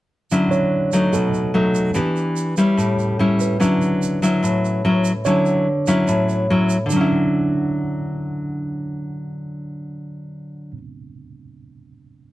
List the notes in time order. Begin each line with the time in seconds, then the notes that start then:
0.31 D3 F#3 C#4 E4, shaker
0.51 C#5, shaker
0.92 F#3 A3 D#4, shaker
1.13 B2 A4, shaker
1.34 shaker
1.54 F#3 A3 D#4
1.75 shaker
1.94 E3 B3 D4 G4, shaker
2.16 shaker
2.36 shaker
2.57 G3 C#4 E4, shaker
2.77 A2, shaker
2.99 shaker
3.19 G3 C#4 E4
3.40 B4, shaker
3.60 D3 F#3 C#4 E4, shaker
3.82 shaker
4.02 shaker
4.22 F#3 C#4 E4, shaker
4.43 A2, shaker
4.65 shaker
4.85 F#3 C#4 E4
5.05 shaker
5.25 D3 F#3 C#4 E4 C#5, shaker
5.46 shaker
5.87 F#3 C#4 E4, shaker
6.08 A2, shaker
6.29 shaker
6.50 F#3 C#4 E4
6.70 shaker
6.86 D3
6.90 F#3 D4, shaker
6.96 C#4
7.01 E4